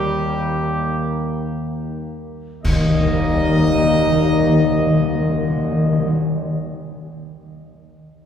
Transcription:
0.00 2.19 D#2 medium
0.00 0.51 D#3 loud
0.00 2.23 D#3 medium
0.00 1.73 G3 loud
0.00 2.19 A#3 medium
0.00 1.73 G4 loud
2.64 6.10 D#2 loud
2.64 2.72 D#3 loud
2.64 6.09 G3 medium
2.64 6.10 A#3 loud
2.64 6.10 D#4 loud
2.64 6.09 D#5 loud
2.64 concert bass drum medium
2.64 crash medium
2.72 2.79 D#3 loud
2.79 2.86 D#3 loud
2.86 2.93 D#3 medium
2.93 2.99 D#3 loud
2.99 3.06 D#3 medium
3.07 3.14 D#3 loud
3.14 3.21 D#3 medium
3.21 3.27 D#3 loud
3.27 3.34 D#3 medium
3.35 3.42 D#3 loud
3.42 3.49 D#3 medium
3.50 3.57 D#3 loud
3.57 3.64 D#3 loud
3.64 3.70 D#3 medium
3.70 3.77 D#3 loud
3.78 3.85 D#3 loud
3.85 3.92 D#3 medium
3.93 4.00 D#3 loud
4.00 4.07 D#3 medium
4.08 4.15 D#3 loud
4.15 4.22 D#3 medium
4.22 4.29 D#3 loud
4.29 4.36 D#3 medium
4.36 4.43 D#3 loud
4.44 4.51 D#3 loud
4.51 4.58 D#3 loud
4.59 4.65 D#3 loud
4.65 4.72 D#3 loud
4.72 4.79 D#3 medium
4.79 4.86 D#3 loud
4.87 4.94 D#3 medium
4.94 5.01 D#3 loud
5.01 5.07 D#3 loud
5.07 5.14 D#3 medium
5.15 5.22 D#3 medium
5.22 5.29 D#3 loud
5.29 5.36 D#3 loud
5.36 5.43 D#3 medium
5.43 5.50 D#3 medium
5.50 5.57 D#3 loud
5.57 5.64 D#3 medium
5.64 5.71 D#3 loud
5.71 5.78 D#3 loud
5.78 5.85 D#3 loud
5.85 5.92 D#3 medium
5.92 5.99 D#3 loud
6.00 6.07 D#3 loud
6.08 6.15 D#3 loud

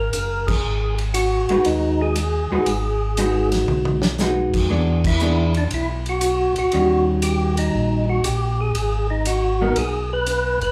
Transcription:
0.00 0.50 A#4 loud
0.13 0.60 F#1 medium
0.13 hi-hat pedal medium
0.13 ride medium
0.47 0.95 G#4 medium
0.47 kick medium
0.47 crash medium
0.64 1.46 G#1 medium
0.98 ride soft
1.14 1.67 F#4 medium
1.14 hi-hat pedal medium
1.14 ride medium
1.49 1.58 G#1 soft
1.49 2.13 G#3 medium
1.49 2.14 D#4 medium
1.49 2.14 F#4 medium
1.49 2.14 B4 medium
1.49 ride soft
1.65 2.47 D#2 medium
1.65 2.02 D#4 medium
1.65 ride medium
2.01 3.49 G#4 loud
2.16 hi-hat pedal medium
2.16 ride medium
2.51 2.59 D#2 soft
2.51 2.66 G#3 medium
2.51 2.66 D#4 medium
2.51 2.66 F#4 medium
2.51 2.66 B4 medium
2.66 3.64 G#1 medium
2.66 ride medium
3.17 3.97 G#3 medium
3.17 3.97 D#4 medium
3.17 3.97 F#4 medium
3.17 3.97 B4 medium
3.17 hi-hat pedal medium
3.17 ride medium
3.52 snare soft
3.52 ride medium
3.68 4.50 B1 medium
3.68 high tom medium
3.85 high tom medium
4.02 snare medium
4.18 4.70 G#3 medium
4.18 4.70 D#4 medium
4.18 4.71 F#4 medium
4.18 4.71 B4 medium
4.18 snare medium
4.18 hi-hat pedal medium
4.53 4.69 F2 medium
4.53 kick medium
4.53 crash medium
4.70 5.68 E2 medium
4.70 5.01 E3 soft
4.70 5.02 B3 medium
4.70 5.01 D4 medium
4.70 5.02 G#4 medium
5.04 5.53 E4 loud
5.04 kick medium
5.04 crash medium
5.19 5.52 E3 medium
5.19 5.52 B3 medium
5.19 5.53 D4 medium
5.19 5.53 G#4 medium
5.19 hi-hat pedal medium
5.54 5.64 D4 medium
5.54 ride soft
5.71 6.53 B1 medium
5.71 5.89 E4 medium
5.71 ride medium
6.06 6.55 F#4 loud
6.06 ride soft
6.21 hi-hat pedal medium
6.21 ride medium
6.56 6.65 B1 soft
6.56 7.05 F#4 medium
6.56 ride soft
6.72 7.70 D#2 medium
6.72 8.15 D#3 medium
6.72 8.16 G3 medium
6.72 8.16 C#4 medium
6.72 8.16 F#4 medium
6.72 ride medium
7.22 7.56 G4 medium
7.22 hi-hat pedal medium
7.22 ride medium
7.57 8.06 D#4 medium
7.57 ride medium
7.74 8.21 A#1 medium
8.09 8.25 F#4 medium
8.24 8.72 A#1 medium
8.24 8.60 G4 medium
8.24 hi-hat pedal medium
8.24 ride medium
8.61 9.07 G#4 medium
8.75 9.73 G#1 medium
8.75 ride medium
9.10 9.27 D#4 medium
9.25 9.62 F#4 medium
9.25 hi-hat pedal medium
9.25 ride medium
9.61 9.75 F#3 medium
9.61 9.76 B3 medium
9.61 9.76 D#4 medium
9.61 9.78 A#4 medium
9.76 10.58 B1 medium
9.76 10.10 G#4 medium
9.76 ride medium
10.13 10.59 B4 loud
10.26 hi-hat pedal medium
10.26 ride medium
10.61 10.72 G1 medium
10.61 10.72 B4 loud
10.61 ride soft

